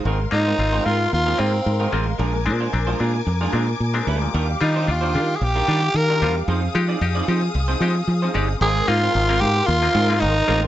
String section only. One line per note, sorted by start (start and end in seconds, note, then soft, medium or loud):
0.06 4.30 A#4 medium
0.06 2.18 F5 medium
0.06 2.18 C6 medium
2.20 4.32 G#5 medium
2.20 6.43 D6 medium
4.34 6.45 G4 medium
4.34 8.57 F5 medium
6.48 8.59 G#4 medium
6.48 8.59 D#6 medium
8.61 10.67 A#4 medium
8.61 10.67 F5 medium
8.61 10.67 C6 medium